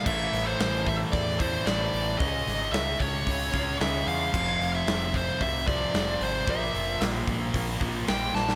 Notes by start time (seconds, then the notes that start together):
0.04 A1 A2 E3 A3 E5, kick, crash
0.33 A1, snare, open hi-hat
0.47 C5
0.59 A1, snare, open hi-hat
0.86 E5, kick, open hi-hat
1.12 E2 D5, kick, open hi-hat
1.38 A2 E3 A3 C5, kick, open hi-hat
1.64 A1 A2 E3 A3 D5, snare, open hi-hat
1.93 A1, open hi-hat
2.18 C#2 C#3 G#3 C#4 D#5, kick, open hi-hat
2.47 G#1, snare, open hi-hat
2.72 C#2 E5, snare, open hi-hat
2.99 C#2 C#5, kick, open hi-hat
3.27 C#2, kick, open hi-hat
3.52 C#2 C#3 G#3 C#4, kick, open hi-hat
3.78 C#2 C#3 G#3 C#4 E5, snare, open hi-hat
4.07 E2 F5, open hi-hat
4.32 F1 F2 C3 F3, kick, crash
4.60 F1, open hi-hat
4.75 E5
4.86 F1, snare, open hi-hat
5.14 C5, kick, open hi-hat
5.41 C2 E5, kick, open hi-hat
5.66 F2 C3 F3 D5, kick, open hi-hat
5.92 F1 F2 C3 F3, snare, open hi-hat
6.21 G#1 C5, open hi-hat
6.46 A#1 A#2 F3 A#3, kick, open hi-hat
6.50 E5
6.74 F1, open hi-hat
7.01 A#1, snare, open hi-hat
7.28 A#1, kick, open hi-hat
7.54 A#1, kick, open hi-hat
7.78 A#1 A#2 F3 A#3, kick, open hi-hat
8.05 A#1 A#2 F3 A#3 G5, snare, open hi-hat
8.34 A#1 A5, snare
8.49 snare